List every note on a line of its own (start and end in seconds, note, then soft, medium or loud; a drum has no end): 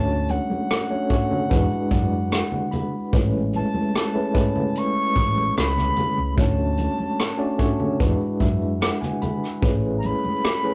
0.00 0.36 D2 medium
0.00 0.84 A3 medium
0.00 0.84 C#4 medium
0.00 0.84 D4 medium
0.00 0.84 F#4 medium
0.00 0.87 C#5 medium
0.00 0.32 A5 medium
0.09 muted conga soft
0.28 2.74 F#5 medium
0.28 closed hi-hat medium
0.28 high conga medium
0.50 muted fingered electric bass stroke soft
0.50 high conga medium
0.70 cross-stick loud
0.70 closed hi-hat medium
0.70 muted conga soft
0.90 1.08 A3 medium
0.90 1.08 C#4 medium
0.90 1.09 D4 medium
0.90 1.09 F#4 medium
0.90 1.09 C#5 medium
0.90 muted conga soft
1.09 1.50 A3 medium
1.09 1.51 C#4 medium
1.09 1.49 D4 medium
1.09 1.49 F#4 medium
1.09 1.51 C#5 medium
1.09 kick medium
1.09 closed hi-hat medium
1.31 low conga medium
1.49 1.67 E2 medium
1.49 3.03 G#3 medium
1.49 3.03 D4 medium
1.49 3.03 E4 medium
1.49 3.03 F#4 medium
1.49 3.03 B4 medium
1.49 kick medium
1.49 closed hi-hat medium
1.49 muted conga soft
1.72 muted conga soft
1.91 2.39 F#2 medium
1.91 2.29 D5 medium
1.91 kick medium
1.91 closed hi-hat medium
2.12 high conga soft
2.31 2.70 F#5 medium
2.31 cross-stick loud
2.31 closed hi-hat medium
2.52 low conga medium
2.71 3.10 B5 medium
2.71 closed hi-hat medium
2.71 high conga medium
2.71 low conga medium
3.13 3.61 A1 medium
3.13 4.08 G#3 medium
3.13 4.08 A3 medium
3.13 4.08 C#4 medium
3.13 4.08 E4 medium
3.13 4.09 B4 medium
3.13 kick loud
3.13 closed hi-hat medium
3.13 muted conga soft
3.33 muted conga soft
3.53 4.80 A5 medium
3.53 closed hi-hat medium
3.53 high conga medium
3.74 muted fingered electric bass stroke soft
3.74 high conga medium
3.94 cross-stick loud
3.94 closed hi-hat medium
3.94 muted conga soft
4.14 4.32 A3 medium
4.14 4.33 C#4 medium
4.14 4.33 E4 medium
4.14 4.34 G#4 medium
4.14 4.33 B4 medium
4.14 muted conga soft
4.33 5.87 G#3 medium
4.33 5.86 A3 medium
4.33 5.87 C#4 medium
4.33 5.87 E4 medium
4.33 5.87 B4 medium
4.33 kick medium
4.33 closed hi-hat medium
4.56 low conga medium
4.75 5.58 C#6 medium
4.75 closed hi-hat medium
5.16 5.48 A1 medium
5.16 kick medium
5.16 closed hi-hat medium
5.37 high conga soft
5.57 5.89 C#2 medium
5.57 6.35 B5 medium
5.57 cross-stick loud
5.57 closed hi-hat medium
5.77 cross-stick soft
5.77 muted conga soft
5.77 low conga medium
5.96 closed hi-hat medium
5.96 high conga medium
5.96 low conga medium
6.18 6.34 C#2 medium
6.37 6.85 D2 loud
6.37 7.32 A3 medium
6.37 7.33 C#4 medium
6.37 7.33 D4 medium
6.37 7.33 F#4 medium
6.37 7.33 C#5 medium
6.37 7.97 A5 medium
6.37 kick loud
6.37 closed hi-hat medium
6.37 muted conga soft
6.57 muted conga soft
6.77 closed hi-hat medium
6.77 high conga medium
6.98 muted fingered electric bass stroke soft
6.98 high conga medium
7.19 cross-stick loud
7.19 closed hi-hat medium
7.38 7.57 A3 medium
7.38 7.57 C#4 medium
7.38 7.57 D4 medium
7.38 7.58 F#4 medium
7.38 7.58 D5 medium
7.58 7.99 A3 medium
7.58 8.00 C#4 medium
7.58 7.99 D4 medium
7.58 7.99 F#4 medium
7.58 8.00 C#5 medium
7.58 kick medium
7.58 closed hi-hat medium
7.80 low conga medium
7.99 8.16 E2 medium
7.99 9.52 G#3 medium
7.99 9.52 D4 medium
7.99 9.52 E4 medium
7.99 9.52 F#4 medium
7.99 9.52 B4 medium
7.99 kick medium
7.99 closed hi-hat medium
7.99 muted conga soft
8.21 muted fingered electric bass stroke soft
8.21 muted conga soft
8.40 8.88 F#2 medium
8.40 8.78 E5 medium
8.40 kick medium
8.40 closed hi-hat medium
8.62 high conga soft
8.81 9.00 F#5 medium
8.81 cross-stick loud
8.81 closed hi-hat medium
9.01 9.20 G#5 medium
9.01 cross-stick soft
9.01 muted conga soft
9.01 low conga medium
9.21 9.59 B5 medium
9.21 closed hi-hat medium
9.21 high conga medium
9.21 low conga medium
9.44 cross-stick soft
9.62 10.10 A1 medium
9.62 10.57 A3 medium
9.62 10.57 C#4 medium
9.62 10.57 E4 medium
9.62 10.57 G#4 medium
9.62 10.57 B4 medium
9.62 kick loud
9.62 closed hi-hat medium
9.99 10.07 A#5 medium
9.99 closed hi-hat medium
10.04 10.74 B5 loud
10.04 high conga medium
10.24 muted fingered electric bass stroke soft
10.24 high conga medium
10.44 cross-stick loud
10.44 closed hi-hat medium
10.44 muted conga soft
10.63 10.74 A3 medium
10.63 10.74 C#4 medium
10.63 10.74 E4 medium
10.63 10.74 G#4 medium
10.63 10.74 B4 medium
10.63 muted conga soft